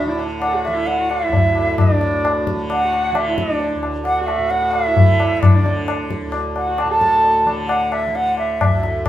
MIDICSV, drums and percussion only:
0, 0, Header, 1, 2, 480
1, 0, Start_track
1, 0, Tempo, 454890
1, 1886, Time_signature, 4, 2, 24, 8
1, 9589, End_track
2, 0, Start_track
2, 0, Title_t, "Tabla"
2, 204, Note_on_c, 9, 60, 46
2, 309, Note_off_c, 9, 60, 0
2, 440, Note_on_c, 9, 60, 71
2, 546, Note_off_c, 9, 60, 0
2, 687, Note_on_c, 9, 60, 54
2, 792, Note_off_c, 9, 60, 0
2, 919, Note_on_c, 9, 63, 58
2, 1024, Note_off_c, 9, 63, 0
2, 1170, Note_on_c, 9, 60, 46
2, 1275, Note_off_c, 9, 60, 0
2, 1403, Note_on_c, 9, 63, 75
2, 1403, Note_on_c, 9, 64, 67
2, 1508, Note_off_c, 9, 63, 0
2, 1508, Note_off_c, 9, 64, 0
2, 1638, Note_on_c, 9, 60, 55
2, 1744, Note_off_c, 9, 60, 0
2, 1881, Note_on_c, 9, 60, 83
2, 1881, Note_on_c, 9, 64, 78
2, 1986, Note_off_c, 9, 60, 0
2, 1986, Note_off_c, 9, 64, 0
2, 2122, Note_on_c, 9, 62, 65
2, 2228, Note_off_c, 9, 62, 0
2, 2373, Note_on_c, 9, 60, 78
2, 2478, Note_off_c, 9, 60, 0
2, 2607, Note_on_c, 9, 37, 61
2, 2712, Note_off_c, 9, 37, 0
2, 2848, Note_on_c, 9, 60, 73
2, 2953, Note_off_c, 9, 60, 0
2, 3093, Note_on_c, 9, 60, 50
2, 3199, Note_off_c, 9, 60, 0
2, 3325, Note_on_c, 9, 60, 75
2, 3431, Note_off_c, 9, 60, 0
2, 3566, Note_on_c, 9, 37, 64
2, 3671, Note_off_c, 9, 37, 0
2, 3801, Note_on_c, 9, 63, 67
2, 3906, Note_off_c, 9, 63, 0
2, 4040, Note_on_c, 9, 60, 51
2, 4146, Note_off_c, 9, 60, 0
2, 4276, Note_on_c, 9, 60, 67
2, 4381, Note_off_c, 9, 60, 0
2, 4517, Note_on_c, 9, 60, 53
2, 4622, Note_off_c, 9, 60, 0
2, 4756, Note_on_c, 9, 63, 64
2, 4862, Note_off_c, 9, 63, 0
2, 4993, Note_on_c, 9, 60, 51
2, 5099, Note_off_c, 9, 60, 0
2, 5240, Note_on_c, 9, 63, 74
2, 5240, Note_on_c, 9, 64, 70
2, 5345, Note_off_c, 9, 63, 0
2, 5345, Note_off_c, 9, 64, 0
2, 5485, Note_on_c, 9, 60, 58
2, 5590, Note_off_c, 9, 60, 0
2, 5727, Note_on_c, 9, 60, 92
2, 5727, Note_on_c, 9, 64, 77
2, 5832, Note_off_c, 9, 60, 0
2, 5832, Note_off_c, 9, 64, 0
2, 5971, Note_on_c, 9, 62, 62
2, 6076, Note_off_c, 9, 62, 0
2, 6205, Note_on_c, 9, 60, 72
2, 6311, Note_off_c, 9, 60, 0
2, 6442, Note_on_c, 9, 37, 56
2, 6548, Note_off_c, 9, 37, 0
2, 6670, Note_on_c, 9, 60, 70
2, 6775, Note_off_c, 9, 60, 0
2, 6920, Note_on_c, 9, 60, 47
2, 7026, Note_off_c, 9, 60, 0
2, 7157, Note_on_c, 9, 60, 76
2, 7263, Note_off_c, 9, 60, 0
2, 7401, Note_on_c, 9, 37, 59
2, 7506, Note_off_c, 9, 37, 0
2, 7639, Note_on_c, 9, 63, 70
2, 7745, Note_off_c, 9, 63, 0
2, 7881, Note_on_c, 9, 60, 51
2, 7986, Note_off_c, 9, 60, 0
2, 8117, Note_on_c, 9, 60, 72
2, 8223, Note_off_c, 9, 60, 0
2, 8358, Note_on_c, 9, 60, 56
2, 8463, Note_off_c, 9, 60, 0
2, 8601, Note_on_c, 9, 63, 69
2, 8706, Note_off_c, 9, 63, 0
2, 8836, Note_on_c, 9, 60, 51
2, 8942, Note_off_c, 9, 60, 0
2, 9085, Note_on_c, 9, 60, 85
2, 9085, Note_on_c, 9, 64, 68
2, 9191, Note_off_c, 9, 60, 0
2, 9191, Note_off_c, 9, 64, 0
2, 9321, Note_on_c, 9, 62, 55
2, 9426, Note_off_c, 9, 62, 0
2, 9557, Note_on_c, 9, 60, 99
2, 9557, Note_on_c, 9, 64, 80
2, 9589, Note_off_c, 9, 60, 0
2, 9589, Note_off_c, 9, 64, 0
2, 9589, End_track
0, 0, End_of_file